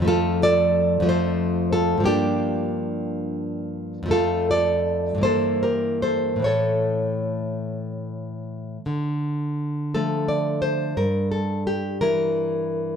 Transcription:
\new Staff \with { instrumentName = "Nylon-string guitar" } { \time 6/8 \key d \minor \tempo 4. = 57 << { <f' a'>8 <a' d''>4 <a' c''>4 <f' a'>8 | <d' g'>2. | <f' a'>8 <a' d''>4 <a' c''>8 <g' bes'>8 <a' c''>8 | <a' cis''>2~ <a' cis''>8 r8 |
r4. a'8 d''8 c''8 | bes'8 a'8 g'8 bes'4. | } \\ { <f, f a>4. <f, f a>4. | <g, f bes>2. | <f, f a>4. <g, e bes>4. | <a, e a>2. |
d4. <f a>4. | g,4. <e e'>4. | } >> }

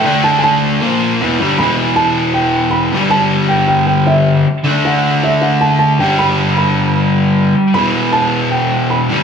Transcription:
<<
  \new Staff \with { instrumentName = "Felt piano" } { \time 4/4 \key e \minor \tempo 4 = 156 g''8 a''8 <gis'' a''>2 r4 | b''4 a''4 g''4 b''4 | a''4 g''8 g''8 g''8 e''4 r8 | r8 fis''4 e''8 fis''8 a''8 a''8 g''8 |
b''4 b''4 r2 | b''4 a''4 g''4 b''4 | }
  \new Staff \with { instrumentName = "Overdriven electric guitar" } { \clef bass \time 4/4 \key e \minor <d a d'>2 <ais, eis ais>4 <e, b, e>8 <g, d g>8 | <e, b, e>2.~ <e, b, e>8 <g, d g>8~ | <g, d g>2.~ <g, d g>8 r8 | <d a d'>2.~ <d a d'>8 <g, d g>8~ |
<g, d g>2.~ <g, d g>8 r8 | <e, b, e>2.~ <e, b, e>8 <g, d g>8 | }
>>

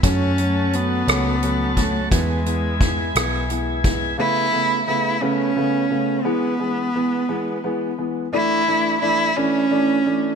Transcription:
<<
  \new Staff \with { instrumentName = "Tonewheel organ" } { \time 6/8 \key a \major \tempo 4. = 58 <fis' a' cis'' a''>2. | <e' gis' b' gis''>2. | r2. | r2. |
r2. | }
  \new Staff \with { instrumentName = "Cello" } { \time 6/8 \key a \major cis'4 b4. a8 | gis2 r4 | e'4 e'8 cis'4. | b2~ b8 r8 |
e'4 e'8 cis'4. | }
  \new Staff \with { instrumentName = "Grand piano" } { \time 6/8 \key a \major <fis a cis'>8 <fis a cis'>8 <fis a cis'>8 <fis a cis'>8 <fis a cis'>8 <fis a cis'>8 | <e gis b>8 <e gis b>8 <e gis b>8 <e gis b>8 <e gis b>8 <e gis b>8 | <cis a b>8 <cis a b>8 <cis a b>8 <cis a b>8 <cis a b>8 <cis a b>8 | <e gis b>8 <e gis b>8 <e gis b>8 <e gis b>8 <e gis b>8 <e gis b>8 |
<e a d'>8 <e a d'>8 <e a d'>8 <e a d'>8 <e a d'>8 <e a d'>8 | }
  \new Staff \with { instrumentName = "Fingered electric bass" } { \clef bass \time 6/8 \key a \major fis,4. cis,4. | e,4. b,,4. | r2. | r2. |
r2. | }
  \new DrumStaff \with { instrumentName = "Drums" } \drummode { \time 6/8 <hh bd>8 hh8 hh8 <hh ss>8 hh8 <hh bd>8 | <hh bd>8 hh8 <hh bd>8 <hh ss>8 hh8 <hh bd>8 | r4. r4. | r4. r4. |
r4. r4. | }
>>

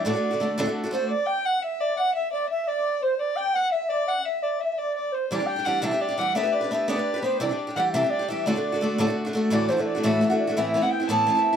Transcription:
<<
  \new Staff \with { instrumentName = "Fiddle" } { \time 6/8 \key d \mixolydian \tempo 4. = 114 d''2 r8 c''8 | d''8 g''8 fis''8 e''8 d''8 fis''8 | e''8 d''8 e''8 d''4 c''8 | d''8 g''8 fis''8 e''8 d''8 fis''8 |
e''8 d''8 e''8 d''8 d''8 c''8 | d''8 g''8 fis''8 e''8 d''8 fis''8 | e''8 d''8 e''8 d''4 c''8 | d''8 r8 fis''8 e''8 d''8 e''8 |
d''2 r4 | d''8 c''8 d''8 e''4. | e''8. fis''16 g''8 a''4 e''8 | }
  \new Staff \with { instrumentName = "Flute" } { \time 6/8 \key d \mixolydian d''2 r8 c''8 | d''8 g''8 fis''8 e''8 d''8 fis''8 | e''8 d''8 e''8 d''4 c''8 | d''8 g''8 fis''8 e''8 d''8 fis''8 |
e''8 d''8 e''8 d''4 c''8 | d''8 g''16. g''32 fis''8 e''8 d''8 fis''8 | e''8 d''8 e''8 d''4 c''8 | d''8 r8 fis''8 e''8 d''8 e''8 |
d''2 r4 | d''8 c''16. e''32 d''8 e''8. fis''16 d''8 | e''8. fis''16 g''8 a''4. | }
  \new Staff \with { instrumentName = "Steel-string acoustic guitar" } { \time 6/8 \key d \mixolydian <d, a, d a d' fis'>16 <d a d' fis'>8 <d a d' fis'>16 <d a d' fis'>8 <d, a, d a d' fis'>16 <d a d' fis'>8 <d a d' fis'>16 <d a d' fis'>8 | r2. | r2. | r2. |
r2. | <c e g d' g'>16 <g d' g'>8 <g d' g'>16 <e g d' g'>8 <c e g d' g'>16 <g d' g'>8 <g d' g'>16 <e g d' g'>8 | <b d' g' b'>16 <d' g' b'>8 <d' g' b'>16 <b d' g' b'>8 <b d' g' b'>16 <d' g' b'>8 <d' g' b'>16 <b d' g' b'>8 | <c e g d' g'>16 <g d' g'>8 <g d' g'>16 <e g d' g'>8 <c e g d' g'>16 <g d' g'>8 <g d' g'>16 <e g d' g'>8 |
<d, a, d a d' fis'>16 <d a d' fis'>8 <d a d' fis'>16 <d a d' fis'>8 <d, a, d a d' fis'>16 <d a d' fis'>8 <d a d' fis'>16 <d a d' fis'>8 | <d, a, e a d' fis'>8 <e a d' fis'>16 <e a d' fis'>8 <e a d' fis'>16 <d, a, e a d' fis'>8 <e a d' fis'>16 <e a d' fis'>8 <e a d' fis'>16 | <a, e b c' e'>8 <e b c' e'>16 <b c' e'>8 <b c' e'>16 <a, e b c' e'>8 <e b c' e'>16 <b c' e'>8 e'16 | }
>>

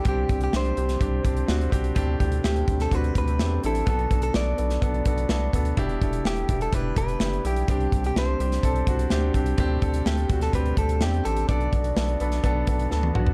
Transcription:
<<
  \new Staff \with { instrumentName = "Clean electric guitar" } { \time 4/4 \key c \lydian \tempo 4 = 126 g'8. g'16 c''2~ c''8 r8 | r4 g'8. a'16 b'8 b'4 a'8 | a'8. a'16 d''2~ d''8 r8 | r4 g'8. a'16 b'8 b'4 g'8 |
g'8. g'16 c''2~ c''8 r8 | r4 g'8. a'16 b'8 a'8 g'8 a'8 | d''2. r4 | }
  \new Staff \with { instrumentName = "Grand piano" } { \time 4/4 \key c \lydian <c' d' g'>8 <c' d' g'>8 <c' d' g'>8 <c' d' g'>8 <c' d' g'>8 <c' d' g'>8 <c' d' fis'>8 <c' d' g'>8 | <c' d' g'>8 <c' d' g'>8 <c' d' g'>8 <c' d' g'>8 <c' d' fis'>8 <c' d' g'>8 <c' d' g'>8 <c' d' e'>8 | <b d' a'>8 <b d' a'>8 <b d' a'>8 <b d' a'>8 <b d' a'>8 <b d' a'>8 <b d' a'>8 <b d' a'>8 | <d' e' g'>8 <d' e' a'>8 <d' e'>8 <d' e' g'>8 <d' e' g'>8 <d' e' g'>8 <d' e' g'>8 <d' e' g'>8 |
<c' d' g'>8 <c' d' g'>8 <c' d' g'>8 <c' d' g'>8 <c' d' a'>8 <c' d' fis'>8 <c' d' g'>8 <c' d' g'>8 | <c' d' g'>8 <c' d' a'>8 <c' d' a'>8 <c' d' fis'>8 <c' d' g'>8 <c' d' g'>8 <c' d' g'>8 <c' d' g'>8 | <b d' a'>8 <b d' a'>8 <b d' a'>8 <b d' a'>8 <b d' a'>8 <b d' a'>8 <b d' a'>8 <b d' fis'>8 | }
  \new Staff \with { instrumentName = "Grand piano" } { \clef bass \time 4/4 \key c \lydian g,4. r2 r8 | a,4. r2 r8 | r1 | b,4. r2 r8 |
g,4. r2 r8 | a,4. r2 r8 | r4. b''8 a''4 a''8 fis''8 | }
  \new Staff \with { instrumentName = "Tonewheel organ" } { \time 4/4 \key c \lydian << { <g g'>1~ | <g g'>1 | <fis fis'>1 | <e e'>1 |
g'1~ | g'1 | <fis fis'>1 | } \\ { d'1 | c'1 | b1~ | b1 |
d'1 | c'1 | b1 | } >> }
  \new Staff \with { instrumentName = "Tonewheel organ" } { \clef bass \time 4/4 \key c \lydian << { r1 | a1 | a1 | g1~ |
g1 | a1 | a1 | } \\ { <c d>1 | d1~ | d1~ | d1 |
c1 | r1 | d1 | } >> }
  \new Staff \with { instrumentName = "Analog synth bass" } { \clef bass \time 4/4 \key c \lydian c,8 c,8 c,8 c,8 c,8 c,8 d,8 c,8 | d,8 d,8 d,8 d,8 d,8 d,8 e,8 a,,8 | b,,8 b,,8 b,,8 b,,8 b,,8 b,,8 c,8 d,8 | e,,8 e,,8 e,,8 e,,8 e,,8 e,,8 fis,,8 b,,8 |
c,8 c,8 c,8 c,8 c,8 c,8 d,8 c,8 | d,8 d,8 d,8 d,8 d,8 d,8 e,8 a,,8 | b,,8 b,,8 b,,8 b,,8 b,,8 b,,8 d,8 b,,8 | }
  \new DrumStaff \with { instrumentName = "Drums" } \drummode { \time 4/4 <hh bd>8 <hh bd>16 hh16 sn16 hh16 hh16 <hh sn>16 <hh bd>8 <hh bd>16 hh16 sn16 hh16 <hh bd>16 hh16 | <hh bd>8 <hh bd>16 hh16 sn16 hh16 <hh bd>16 <hh sn>16 <hh bd>16 hh16 <hh bd>16 hh16 sn8 hh16 hh16 | <hh bd>16 hh16 <hh bd>16 hh16 sn8 hh16 <hh sn>16 <hh bd>16 hh16 <hh bd>16 hh16 sn8 <hh bd>16 hh16 | <hh bd>16 hh16 <hh bd>16 hh16 sn16 hh16 <hh bd>16 hh16 <hh bd>8 <hh bd>16 hh16 sn16 hh16 hh16 hh16 |
<hh bd>16 hh16 <hh bd>16 hh16 sn8 hh16 <hh sn>16 <hh bd>16 hh16 <hh bd>16 hh16 sn8 <hh bd>16 hh16 | <hh bd>8 <hh bd>16 hh16 sn16 hh16 <hh bd>16 <hh sn>16 <hh bd>16 hh16 <hh bd>16 hh16 sn16 hh16 hh16 hh16 | <hh bd>16 hh16 <hh bd>16 hh16 sn16 hh16 hh16 <hh sn>16 <hh bd>8 <hh bd>16 hh16 sn16 tommh16 toml16 tomfh16 | }
>>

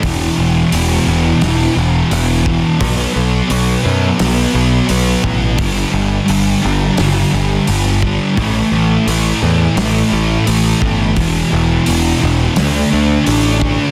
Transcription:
<<
  \new Staff \with { instrumentName = "Distorted electric guitar" } { \clef bass \time 4/4 \key e \dorian \tempo 4 = 86 <e, b, e>8 <b, e>8 <e, b, e>8 <b, e>8 <e, b, e>8 <b, e>8 <e, b, e>8 <b, e>8 | <b, fis b>8 <fis b>8 <b, fis b>8 <fis b>8 <b, fis b>8 <fis b>8 <b, fis b>8 <fis b>8 | <g, d g>8 <d g>8 <g, d g>8 <d g>8 <g, d g>8 <d g>8 <g, d g>8 <d g>8 | <a, e a>8 <e a>8 <a, e a>8 <e a>8 <a, e a>8 <e a>8 <a, e a>8 <e a>8 |
<e, b, e>8 <b, e>8 <e, b, e>8 <b, e>8 <d a d'>8 <a d'>8 <d a d'>8 <a d'>8 | }
  \new Staff \with { instrumentName = "Picked electric bass" } { \clef bass \time 4/4 \key e \dorian e,,8 e,,8 e,,8 e,,8 e,,8 e,,8 e,,4 | b,,8 b,,8 b,,8 fis,8 b,,8 b,,8 b,,8 a,,8 | g,,8 g,,8 g,,8 g,,8 g,,8 g,,8 g,,4 | a,,8 a,,8 a,,8 e,8 a,,8 a,,8 a,,8 g,,8 |
e,,8 e,,8 e,,8 e,,8 d,8 d,8 a,,4 | }
  \new DrumStaff \with { instrumentName = "Drums" } \drummode { \time 4/4 <hho bd>4 hho4 <hho sn>4 hho8 bd8 | <hho bd>4 hho4 <hho sn>4 hho8 bd8 | <hho bd>4 hho4 <hho sn>4 hho16 sn16 bd8 | <hho bd>4 hho4 <hho sn>4 hho8 bd8 |
<hho bd>4 hho4 <hho sn>4 hho8 bd8 | }
>>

